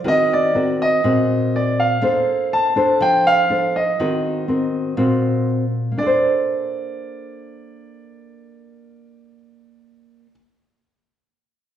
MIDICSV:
0, 0, Header, 1, 3, 480
1, 0, Start_track
1, 0, Key_signature, -2, "major"
1, 0, Tempo, 492207
1, 52, Time_signature, 4, 2, 24, 8
1, 11477, End_track
2, 0, Start_track
2, 0, Title_t, "Grand piano"
2, 0, Program_c, 0, 0
2, 79, Note_on_c, 0, 75, 86
2, 312, Note_off_c, 0, 75, 0
2, 326, Note_on_c, 0, 74, 72
2, 799, Note_on_c, 0, 75, 79
2, 802, Note_off_c, 0, 74, 0
2, 1520, Note_on_c, 0, 74, 66
2, 1526, Note_off_c, 0, 75, 0
2, 1752, Note_off_c, 0, 74, 0
2, 1752, Note_on_c, 0, 77, 67
2, 2470, Note_on_c, 0, 81, 77
2, 2483, Note_off_c, 0, 77, 0
2, 2908, Note_off_c, 0, 81, 0
2, 2947, Note_on_c, 0, 79, 82
2, 3186, Note_off_c, 0, 79, 0
2, 3188, Note_on_c, 0, 77, 85
2, 3668, Note_on_c, 0, 75, 65
2, 3674, Note_off_c, 0, 77, 0
2, 5301, Note_off_c, 0, 75, 0
2, 5837, Note_on_c, 0, 74, 72
2, 10035, Note_off_c, 0, 74, 0
2, 11477, End_track
3, 0, Start_track
3, 0, Title_t, "Nylon-string guitar"
3, 0, Program_c, 1, 24
3, 42, Note_on_c, 1, 51, 59
3, 47, Note_on_c, 1, 60, 54
3, 48, Note_on_c, 1, 66, 47
3, 54, Note_on_c, 1, 70, 58
3, 490, Note_off_c, 1, 60, 0
3, 491, Note_off_c, 1, 66, 0
3, 494, Note_off_c, 1, 70, 0
3, 532, Note_on_c, 1, 60, 50
3, 537, Note_on_c, 1, 66, 50
3, 539, Note_on_c, 1, 70, 55
3, 973, Note_off_c, 1, 60, 0
3, 976, Note_off_c, 1, 66, 0
3, 976, Note_off_c, 1, 70, 0
3, 983, Note_off_c, 1, 51, 0
3, 1014, Note_on_c, 1, 46, 65
3, 1015, Note_on_c, 1, 60, 54
3, 1018, Note_on_c, 1, 66, 49
3, 1025, Note_on_c, 1, 70, 61
3, 1934, Note_off_c, 1, 60, 0
3, 1937, Note_off_c, 1, 66, 0
3, 1939, Note_off_c, 1, 70, 0
3, 1949, Note_off_c, 1, 46, 0
3, 1966, Note_on_c, 1, 58, 58
3, 1971, Note_on_c, 1, 62, 50
3, 1972, Note_on_c, 1, 69, 57
3, 1980, Note_on_c, 1, 72, 57
3, 2651, Note_off_c, 1, 62, 0
3, 2653, Note_off_c, 1, 69, 0
3, 2657, Note_off_c, 1, 72, 0
3, 2690, Note_on_c, 1, 62, 59
3, 2696, Note_on_c, 1, 69, 56
3, 2698, Note_on_c, 1, 72, 55
3, 2905, Note_off_c, 1, 58, 0
3, 2930, Note_on_c, 1, 53, 64
3, 3373, Note_off_c, 1, 62, 0
3, 3374, Note_off_c, 1, 69, 0
3, 3376, Note_off_c, 1, 72, 0
3, 3411, Note_on_c, 1, 62, 47
3, 3415, Note_on_c, 1, 69, 48
3, 3421, Note_on_c, 1, 72, 45
3, 3720, Note_off_c, 1, 62, 0
3, 3723, Note_off_c, 1, 69, 0
3, 3724, Note_off_c, 1, 72, 0
3, 3867, Note_off_c, 1, 53, 0
3, 3897, Note_on_c, 1, 51, 61
3, 3901, Note_on_c, 1, 60, 48
3, 3903, Note_on_c, 1, 66, 50
3, 3908, Note_on_c, 1, 70, 59
3, 4337, Note_off_c, 1, 60, 0
3, 4339, Note_off_c, 1, 66, 0
3, 4340, Note_off_c, 1, 70, 0
3, 4369, Note_on_c, 1, 60, 52
3, 4373, Note_on_c, 1, 66, 48
3, 4381, Note_on_c, 1, 70, 46
3, 4812, Note_off_c, 1, 60, 0
3, 4815, Note_off_c, 1, 66, 0
3, 4816, Note_off_c, 1, 70, 0
3, 4830, Note_off_c, 1, 51, 0
3, 4848, Note_on_c, 1, 46, 61
3, 4852, Note_on_c, 1, 60, 57
3, 4855, Note_on_c, 1, 66, 51
3, 4857, Note_on_c, 1, 70, 60
3, 5497, Note_off_c, 1, 60, 0
3, 5497, Note_off_c, 1, 66, 0
3, 5499, Note_off_c, 1, 70, 0
3, 5769, Note_on_c, 1, 58, 49
3, 5786, Note_off_c, 1, 46, 0
3, 5827, Note_on_c, 1, 62, 56
3, 5872, Note_on_c, 1, 69, 55
3, 5913, Note_on_c, 1, 72, 60
3, 10006, Note_off_c, 1, 58, 0
3, 10064, Note_off_c, 1, 62, 0
3, 10109, Note_off_c, 1, 69, 0
3, 10151, Note_off_c, 1, 72, 0
3, 11477, End_track
0, 0, End_of_file